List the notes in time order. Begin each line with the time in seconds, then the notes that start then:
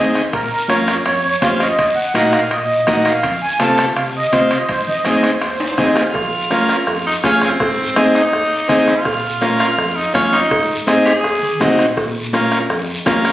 Already playing: D#2 C4 D#4 G#4 D#5
0.15 bombo rim, short guiro
0.33 A#2 A#4, bombo low, bombo rim, high conga, high timbale, long guiro
0.68 F2 C#4 F4 A#4 C#5, bombo rim, high conga, high timbale, short guiro
0.88 C#5, bombo rim, high timbale, short guiro
1.05 F2 C#5, bombo rim, high conga, high timbale, long guiro
1.24 C#5
1.41 F2 C#4 F4 C5 F5, bombo low, bombo rim, high conga, high timbale, low timbale, short guiro
1.60 D#5, bombo rim, high timbale, short guiro
1.78 D#2 D#5, bombo low, bombo rim, high conga, high timbale, long guiro
1.95 F#5
2.14 A#2 D#4 F#4 A#4 F5, bombo rim, high conga, high timbale, short guiro
2.33 F5, bombo rim, high timbale, short guiro
2.51 A#2 D#5, bombo rim, high conga, high timbale, long guiro
2.87 A#2 D#4 F#4 A#4 D#5, bombo low, bombo rim, high conga, low conga, high timbale, short guiro
3.05 F5, bombo rim, high timbale, short guiro
3.23 F2, bombo low, bombo rim, high conga, high timbale, long guiro
3.42 G#5
3.60 C3 C4 F4 A4 A5, bombo rim, high conga, high timbale, short guiro
3.78 A5, bombo rim, high timbale, short guiro
3.96 C3 F5, bombo rim, high conga, high timbale, long guiro
4.16 D#5
4.32 C3 C4 F4 C5 D#5, bombo low, bombo rim, high conga, high timbale, short guiro
4.51 D#5, bombo rim, high timbale, short guiro
4.69 G#2 C5, bombo low, bombo rim, high conga, high timbale, long guiro
4.88 D#5, low conga
5.05 D#2 C4 D#4 G#4, bombo rim, high conga, high timbale, short guiro
5.23 C5, bombo rim, high timbale, short guiro
5.41 D#2 C5, bombo rim, high conga, high timbale, long guiro
5.60 high timbale
5.72 high timbale
5.78 D#2 C4 D#4 G#4, bombo low, bombo rim, high conga, low conga, short guiro
5.84 low timbale
5.96 F4, bombo rim, low timbale, short guiro
6.14 A#1, bombo low, bombo rim, cowbell, high conga, long guiro
6.50 C#4 F4 A#4, bombo rim, cowbell, high conga, short guiro
6.69 F4, bombo rim, short guiro
6.87 F2, bombo rim, cowbell, high conga, long guiro
7.07 D#4
7.24 F2 C#4 F4 G#4, bombo low, bombo rim, cowbell, high conga, short guiro
7.42 C4, bombo rim, short guiro
7.60 G#2, bombo low, bombo rim, cowbell, high conga, long guiro
7.96 C4 D#4 G#4, bombo rim, cowbell, high conga, short guiro
8.15 D#4, bombo rim, short guiro
8.32 D#2, bombo rim, cowbell, high conga, long guiro
8.68 D#2 C4 D#4 G#4, bombo low, bombo rim, cowbell, high conga, low conga, short guiro
8.87 F4, bombo rim, short guiro
9.05 A#2, bombo low, bombo rim, cowbell, high conga, long guiro
9.41 C#4 F4 A#4, bombo rim, cowbell, high conga, short guiro
9.59 F4, bombo rim, short guiro
9.78 F2, bombo rim, cowbell, high conga, long guiro
9.96 D#4
10.14 F2 C#4 F4 C#5, bombo low, bombo rim, cowbell, high conga, short guiro
10.33 D#4, bombo rim, short guiro
10.51 G#2, bombo low, bombo rim, cowbell, high conga, long guiro
10.87 C4 D#4 G#4, bombo rim, cowbell, high conga, short guiro
11.05 G#4, bombo rim, short guiro
11.23 D#2, bombo rim, cowbell, high conga, long guiro
11.42 D#3
11.60 C3 C4 D#4 F#4, bombo low, bombo rim, cowbell, high conga, low conga, low timbale, short guiro
11.79 A#2, bombo rim, short guiro
11.97 A#2, bombo low, bombo rim, cowbell, high conga, long guiro
12.33 C#4 F4 A#4, bombo rim, cowbell, high conga, short guiro
12.52 bombo rim, short guiro
12.70 F2, bombo rim, cowbell, high conga, long guiro
13.06 F2 C#4 F4 A#4, bombo low, bombo rim, cowbell, high conga, low timbale, short guiro
13.25 bombo rim, short guiro